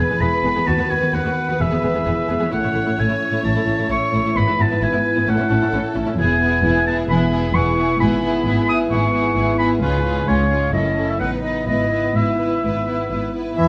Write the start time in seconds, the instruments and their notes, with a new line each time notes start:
Already playing: harp E3 G#3 E4 B4 E5, french horn section B3 G#4, violin section B4, oboe G#5
0.06 viola section B3, harp G#4, violin section G#4
0.11 cello section E2
0.20 double bass section E1, cello section E2, viola section B3, violin section G#4, harp E5, oboe B5
0.36 harp G#4
0.44 double bass section E1, cello section E2, viola section B3, violin section G#4
0.51 violin section G#4, harp B4
0.56 cello section E2, viola section B3
0.66 cello section D#2, double bass section D#2, harp D#3, viola section B3, violin section F#4, french horn section F#4, oboe A5
0.78 cello section D#2, viola section B3, violin section F#4
0.82 harp B3
0.89 cello section D#2, double bass section D#2, viola section B3, violin section F#4, oboe G#5
0.98 viola section B3, harp F#4, violin section F#4
1.02 cello section D#2
1.12 double bass section D#2, cello section D#2, viola section B3, violin section F#4, harp B4, oboe F#5
1.24 cello section D#2, viola section B3, violin section F#4
1.29 harp F#4
1.44 viola section B3, harp B4
1.48 cello section D#2, violin section F#4
1.59 double bass section E1, cello section E2, harp E3, viola section B3, violin section G#4, french horn section G#4, oboe E5
1.71 cello section E2, viola section B3, violin section G#4
1.75 harp E4
1.82 double bass section E1, cello section E2, viola section B3, violin section G#4
1.91 viola section B3, harp G#4, violin section G#4
1.96 cello section E2
2.05 double bass section E1, cello section E2, viola section B3, violin section G#4, harp E5
2.21 harp G#4
2.28 double bass section E1, cello section E2, viola section B3, violin section G#4
2.37 viola section B3, violin section G#4, harp B4
2.41 cello section E2
2.51 double bass section A1, harp A2, cello section A2, viola section A3, french horn section C#4 E4, violin section E4 C#5, oboe F#5
2.63 cello section A2, viola section A3, violin section E4
2.67 harp A3
2.73 double bass section A1, cello section A2, viola section A3, violin section E4
2.82 viola section A3, violin section E4, harp C#5
2.87 cello section A2
2.97 double bass section A1, cello section A2, viola section A3, violin section E4, harp A4, oboe G#5
3.09 cello section A2, viola section A3, violin section E4
3.13 harp C#5
3.28 viola section A3, harp E4, violin section E4
3.33 cello section A2
3.44 double bass section A1, cello section A2, harp E3, viola section A3, violin section E4, oboe A5
3.55 cello section A2, viola section A3, violin section E4
3.60 harp A3
3.66 double bass section A1, cello section A2, viola section A3, violin section E4
3.74 viola section A3, harp C#5
3.78 cello section A2, violin section E4
3.89 double bass section A1, cello section A2, viola section A3, violin section E4, harp A4, oboe C#6
4.05 harp C#5
4.12 double bass section A1, cello section A2, viola section A3, violin section E4
4.20 viola section A3, harp E4
4.25 cello section A2, violin section E4
4.35 double bass section G#1, harp G#2, cello section G#2, viola section B3, french horn section B3, violin section E4 B4, oboe B5
4.47 cello section G#2, viola section B3, violin section E4
4.51 harp B3
4.59 double bass section G#1, cello section G#2, viola section B3, violin section E4, oboe A5
4.67 viola section B3, violin section E4, harp B4
4.71 cello section G#2
4.81 double bass section G#1, cello section G#2, viola section B3, violin section E4, harp E4, oboe G#5
4.93 cello section G#2, viola section B3, violin section E4
4.97 harp B4
5.12 harp E4, violin section E4
5.16 cello section G#2, viola section B3
5.27 double bass section A1, harp A2, cello section A2, viola section C#4, french horn section C#4, violin section E4 A4, oboe F#5
5.38 cello section A2, viola section C#4, violin section E4
5.43 harp C#4
5.50 double bass section A1, cello section A2, viola section C#4, violin section E4
5.58 viola section C#4, violin section E4, harp A4
5.62 cello section A2
5.72 double bass section A1, cello section A2, viola section C#4, violin section E4, harp C#5
5.88 harp A4
5.94 double bass section A1, cello section A2, viola section C#4, violin section E4
6.03 viola section C#4, harp E4, violin section E4
6.07 cello section A2
6.17 double bass section E1, harp E2, cello section E2, french horn section B3 E4, viola section B3, violin section E4 G#4, oboe G#5
6.33 harp B3
6.41 viola section B3, violin section E4 G#4
6.48 harp G#4
6.63 double bass section E1, cello section E2, viola section B3, violin section E4 G#4, harp B4
6.79 harp G#4
6.86 viola section B3, violin section E4 G#4, oboe A5
6.94 harp E4
7.09 double bass section E1, cello section E2, harp B2, viola section B3, violin section E4 G#4, oboe B5
7.24 harp B3
7.31 viola section B3, violin section E4 G#4
7.39 harp G#4
7.53 double bass section E1, cello section E2, viola section B3, violin section E4 G#4, harp B4, oboe C#6
7.70 harp G#4
7.76 viola section B3, violin section E4 G#4
7.85 harp E4
7.99 double bass section G#1, cello section G#2, harp G#2, viola section B3, violin section E4 G#4, oboe B5
8.15 harp B3
8.22 viola section B3, violin section E4 G#4
8.30 harp G#4
8.45 double bass section G#1, cello section G#2, viola section B3, violin section E4 G#4, harp B4
8.61 harp G#4
8.67 viola section B3, violin section E4 G#4, oboe D#6
8.76 harp E4
8.90 double bass section G#1, harp G#2, cello section G#2, viola section B3, violin section E4 G#4, oboe C#6
9.06 harp B3
9.13 viola section B3, violin section E4 G#4
9.21 harp G#4
9.35 double bass section G#1, cello section G#2, viola section B3, violin section E4 G#4, harp B4
9.51 harp G#4
9.59 viola section B3, violin section E4 G#4, oboe B5
9.66 harp E4
9.80 cello section C#2, double bass section C#2, harp C#3, french horn section G#3 F4, viola section C#4, violin section F4 G#4, oboe B4
9.97 harp C#4
10.04 viola section C#4, violin section F4 G#4
10.12 harp G#4
10.27 cello section C#2, double bass section C#2, viola section C#4, violin section F4 G#4, harp C#5, oboe C#5
10.43 harp G#4
10.50 viola section C#4, violin section F4 G#4
10.58 harp F4
10.71 double bass section F#1, harp F#2, cello section F#2, french horn section A3 E4, viola section C#4, violin section E4 A4, oboe D#5
10.88 harp C#4
10.96 viola section C#4, violin section E4 A4
11.04 harp E4 A4
11.10 oboe E5
11.19 double bass section A1, harp A2, cello section A2, french horn section B3 D#4, viola section B3, violin section D#4 B4, oboe F#5
11.35 harp B3
11.42 viola section B3, violin section D#4 B4, oboe D#5
11.51 harp D#4 B4
11.66 double bass section G#1, cello section G#2, harp G#2, viola section B3, french horn section E4, violin section E4 B4, oboe D#5
11.83 harp B3
11.90 viola section B3, violin section E4 B4
12.00 harp B4
12.15 double bass section G#1, cello section G#2, viola section B3, violin section E4 B4, harp E4, oboe E5
12.31 harp B4
12.39 viola section B3, violin section E4 B4
12.47 harp E4
12.63 double bass section G#1, harp G#2, cello section G#2, viola section B3, violin section E4 B4
12.79 harp B3
12.86 viola section B3, violin section E4 B4
12.94 harp B4
13.10 double bass section G#1, cello section G#2, viola section B3, harp E4, violin section E4 B4
13.26 harp B4
13.34 viola section B3, violin section E4 B4
13.42 harp E4
13.56 double bass section E2, french horn section E3, viola section E3, harp E3, cello section E3, bassoon E3, clarinet E4, flute section B4, oboe E5, violin section E5